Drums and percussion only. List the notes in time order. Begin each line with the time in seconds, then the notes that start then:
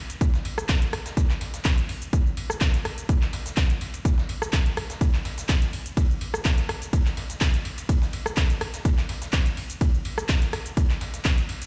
0.10 closed hi-hat, ride, shaker
0.21 kick, closed hi-hat, ride, shaker
0.34 snare, shaker
0.45 open hi-hat, ride
0.58 cross-stick, ride, shaker
0.69 kick, snare, clap, closed hi-hat, ride, shaker
0.82 closed hi-hat, shaker
0.93 cross-stick, open hi-hat, ride
1.06 snare, closed hi-hat, shaker
1.17 kick, closed hi-hat, ride, shaker
1.29 snare, clap, shaker
1.41 snare, open hi-hat, ride
1.54 snare, closed hi-hat, shaker
1.65 kick, snare, clap, closed hi-hat, ride, shaker
1.78 closed hi-hat, shaker
1.89 open hi-hat
2.02 closed hi-hat, shaker
2.13 kick, closed hi-hat, ride, shaker
2.26 shaker
2.37 open hi-hat, ride
2.50 cross-stick, shaker
2.61 kick, snare, clap, closed hi-hat, ride, shaker
2.74 snare, closed hi-hat, shaker
2.85 cross-stick, open hi-hat, ride
2.98 closed hi-hat, shaker
3.09 kick, closed hi-hat, ride, shaker
3.21 snare, clap, shaker
3.33 snare, open hi-hat, ride
3.46 snare, closed hi-hat, shaker
3.57 kick, snare, clap, closed hi-hat, ride, shaker
3.70 closed hi-hat, shaker
3.81 open hi-hat, ride
3.94 closed hi-hat, ride, shaker
4.05 kick, closed hi-hat, ride, shaker
4.18 snare, shaker
4.29 open hi-hat, ride
4.42 cross-stick, ride, shaker
4.53 kick, snare, clap, closed hi-hat, ride, shaker
4.66 closed hi-hat, shaker
4.77 cross-stick, open hi-hat, ride
4.90 snare, closed hi-hat, shaker
5.01 kick, closed hi-hat, ride, shaker
5.13 snare, clap, shaker
5.25 snare, open hi-hat, ride
5.38 snare, closed hi-hat, shaker
5.49 kick, snare, clap, closed hi-hat, ride, shaker
5.62 closed hi-hat, shaker
5.73 open hi-hat
5.86 closed hi-hat, shaker
5.97 kick, closed hi-hat, ride, shaker
6.11 shaker
6.21 open hi-hat, ride
6.34 cross-stick, shaker
6.45 kick, snare, clap, closed hi-hat, ride, shaker
6.58 snare, closed hi-hat, shaker
6.69 cross-stick, open hi-hat, ride
6.82 closed hi-hat, shaker
6.93 kick, closed hi-hat, ride, shaker
7.05 snare, clap, shaker
7.17 snare, open hi-hat, ride
7.30 snare, closed hi-hat, shaker
7.41 kick, snare, clap, closed hi-hat, ride, shaker
7.54 closed hi-hat, shaker
7.65 open hi-hat, ride
7.78 closed hi-hat, ride, shaker
7.89 kick, closed hi-hat, ride, shaker
8.02 snare, shaker
8.13 open hi-hat, ride
8.26 cross-stick, ride, shaker
8.37 kick, snare, clap, closed hi-hat, ride, shaker
8.50 closed hi-hat, shaker
8.61 cross-stick, open hi-hat, ride
8.74 snare, closed hi-hat, shaker
8.85 kick, closed hi-hat, ride, shaker
8.97 snare, clap, shaker
9.09 snare, open hi-hat, ride
9.22 snare, closed hi-hat, shaker
9.33 kick, snare, clap, closed hi-hat, ride, shaker
9.46 closed hi-hat, shaker
9.57 open hi-hat
9.70 closed hi-hat, shaker
9.81 kick, closed hi-hat, ride, shaker
9.94 shaker
10.05 open hi-hat, ride
10.18 cross-stick, shaker
10.29 kick, snare, clap, closed hi-hat, ride, shaker
10.42 snare, closed hi-hat, shaker
10.53 cross-stick, open hi-hat, ride
10.66 closed hi-hat, shaker
10.77 kick, closed hi-hat, ride, shaker
10.89 snare, clap, shaker
11.01 snare, open hi-hat, ride
11.14 snare, closed hi-hat, shaker
11.25 kick, snare, clap, closed hi-hat, ride, shaker
11.38 closed hi-hat, shaker
11.49 open hi-hat, ride
11.62 closed hi-hat, ride, shaker